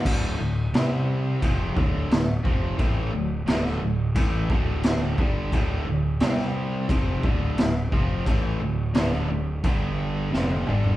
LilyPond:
<<
  \new Staff \with { instrumentName = "Distorted electric guitar" } { \clef bass \time 4/4 \key c \lydian \tempo 4 = 88 <d, a, d>8 <d, a,>8 <c g c'>4 <f, c f>8 <d, a, d>8 <d, a,>8 <f, c f>8 | <a, e a>8 <d, a,>8 <d, a, d>8 <d, a,>8 <a, e a>8 <d, a, d>4 <g, d g>8 | <d, a, d>8 <d, a,>8 <c g c'>4 <f, c f>8 <d, a, d>8 <d, a,>8 <f, c f>8 | <a, e a>8 <d, a,>8 <d, a, d>8 <d, a,>8 <g, d g>4 <f, c f>8 <g, d g>8 | }
  \new Staff \with { instrumentName = "Fingered electric bass" } { \clef bass \time 4/4 \key c \lydian d,,8 d,,8 c,4 f,,8 d,,8 d,,8 f,,8 | a,,8 d,,8 d,,8 d,,8 a,,8 d,,4 g,,8 | d,,8 d,,8 c,4 f,,8 d,,8 d,,8 f,,8 | a,,8 d,,8 d,,8 d,,8 g,,4 f,,8 g,,8 | }
  \new DrumStaff \with { instrumentName = "Drums" } \drummode { \time 4/4 <cymc bd>4 <cymc sn>4 <cymc bd>8 bd8 <cymc sn>8 bd8 | <cymc bd>4 <cymc sn>16 sn8. <cymc bd>8 bd8 <cymc sn>8 bd8 | <cymc bd>4 <cymc sn>16 sn8. <cymc bd>8 bd8 <cymc sn>8 bd8 | <cymc bd>4 <cymc sn>4 <cymc bd>4 sn16 tommh16 toml16 tomfh16 | }
>>